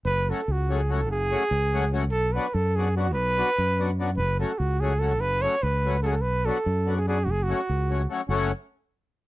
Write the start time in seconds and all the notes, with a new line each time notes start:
0.05 F#1 B4
0.29 F#3 A3 C#4 F#4 A4
0.48 C#2 F#4
0.69 F#3 A3 C#4 F#4 G#4
0.89 F#3 A3 C#4 F#4 A4
1.09 F#1 G#4
1.31 F#3 A3 C#4 F#4
1.51 C#2
1.73 F#3 A3 C#4 F#4
1.93 F#3 A3 C#4 F#4
2.11 B1 A4
2.33 F#3 B3 D4 B4
2.37 F#4
2.54 F#2 A4
2.76 F#3 B3 D4 F#4 G#4
2.96 F#3 B3 D4 F#4
3.14 B1 B4
3.37 F#3 B3 D4 F#4
3.58 F#2
3.79 F#3 B3 D4 F#4
3.99 F#3 B3 D4 F#4
4.17 F#1 B4
4.39 F#3 A3 C#4 F#4 A4
4.58 C#2 F#4
4.80 F#3 A3 C#4 F#4 G#4
4.99 F#3 A3 C#4 F#4 A4
5.20 F#1 B4
5.42 F#3 A3 C#4 F#4 C#5
5.63 C#2 B4
5.85 F#3 A3 C#4 F#4
6.03 F#3 A3 C#4 F#4 G#4 A4
6.12 A4
6.21 B1 B4
6.45 F#3 B3 D4 F#4 A4
6.66 F#2
6.86 F#3 B3 D4 F#4
6.97 G#4
7.07 F#3 B3 D4 F#4 G#4
7.24 F#1 F#4
7.31 G#4
7.43 F#4
7.48 F#3 A3 C#4 F#4
7.69 C#2
7.90 F#3 A3 C#4 F#4
8.10 F#3 A3 C#4 F#4
8.28 F#1 F#3 A3 C#4 F#4